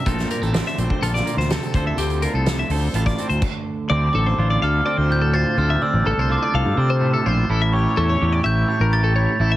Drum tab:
CC |----------------|------------x---|----------------|----------------|
HH |xxxxx-x-xxx-xxx-|xxx-x-o-xxxx----|----------------|----------------|
SD |-o--oo---o-oo---|----o----o------|----------------|----------------|
BD |o------o------o-|---------o--o---|----------------|----------------|

CC |----------------|
HH |----------------|
SD |----------------|
BD |----------------|